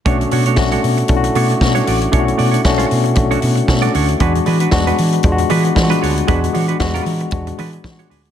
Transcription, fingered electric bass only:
X:1
M:4/4
L:1/8
Q:"Swing 16ths" 1/4=116
K:Bdor
V:1 name="Fingered electric bass" clef=bass
B,,, B,, B,,, B,, B,,, B,, B,, A,,, | B,,, B,, B,,, B,, B,,, B,, B,, D,, | E,, E, E,, E, E,, E, E, D,, | E,, E, E,, E, E,, E, E, D,, |]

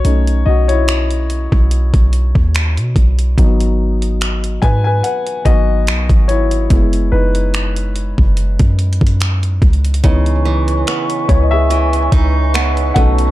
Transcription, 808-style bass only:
X:1
M:4/4
L:1/16
Q:"Swing 16ths" 1/4=72
K:C#m
V:1 name="808-style bass" clef=bass
B,,,2 B,,,4- B,,, B,,,2 B,,,2 D,,2 B,, B,,,2 | G,,,6 G,,2 z2 G,,,2 B,,, G,,,3 | F,,,2 F,,,4- F,,, F,,,2 F,,2 F,,3 C,,2 | C,,4 z2 C,,4 C,,4 B,,,2 |]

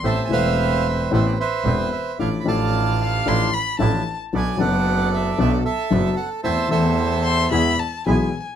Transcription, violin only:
X:1
M:4/4
L:1/16
Q:1/4=112
K:Am
V:1 name="Violin"
z16 | z6 f2 c'2 b2 a3 z | z16 | z6 c'2 b2 a2 ^g3 z |]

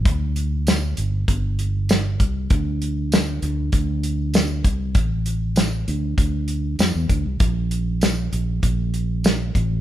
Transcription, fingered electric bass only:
X:1
M:4/4
L:1/16
Q:1/4=98
K:Dm
V:1 name="Fingered electric bass" clef=bass
D,,6 G,,,2 G,,,6 C,,2 | D,,6 D,,2 D,,6 C,,2 | A,,,6 D,,2 D,,4 F,, E,, D,, C,, | B,,,6 B,,,2 B,,,6 A,,,2 |]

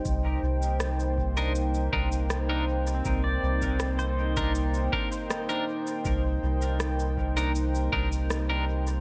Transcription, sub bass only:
X:1
M:4/4
L:1/8
Q:1/4=80
K:Cm
V:1 name="Sub bass" clef=bass
C,, C,,4 C,,3 | C,, C,,4 z3 | C,, C,,4 C,,3 |]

